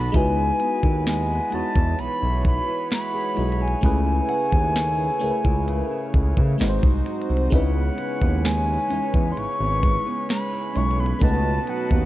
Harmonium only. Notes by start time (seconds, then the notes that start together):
Already playing: F#4 B4 D#5 A5
0.14 B3
1.98 C#5
3.83 A3 E4
6.60 F#4 C5 D#5
7.52 C#4 B4 C#5
11.21 F#4 D#5 A5